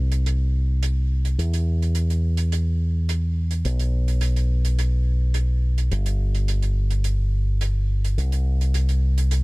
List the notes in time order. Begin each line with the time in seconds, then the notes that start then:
Already playing: C2
0.12 closed hi-hat
0.26 closed hi-hat
0.83 closed hi-hat
1.25 closed hi-hat
1.38 E2, closed hi-hat
1.54 closed hi-hat
1.82 closed hi-hat
1.95 closed hi-hat
2.10 closed hi-hat
2.37 closed hi-hat
2.52 closed hi-hat
3.09 closed hi-hat
3.51 closed hi-hat
3.65 B1, closed hi-hat
3.80 closed hi-hat
4.08 closed hi-hat
4.21 closed hi-hat
4.36 closed hi-hat
4.65 closed hi-hat
4.79 closed hi-hat
5.34 closed hi-hat
5.78 closed hi-hat
5.91 G1, closed hi-hat
6.06 closed hi-hat
6.35 closed hi-hat
6.48 closed hi-hat
6.62 closed hi-hat
6.91 closed hi-hat
7.04 closed hi-hat
7.61 closed hi-hat
8.04 closed hi-hat
8.18 C2, closed hi-hat
8.32 closed hi-hat
8.61 closed hi-hat
8.74 closed hi-hat
8.89 closed hi-hat
9.18 closed hi-hat
9.31 closed hi-hat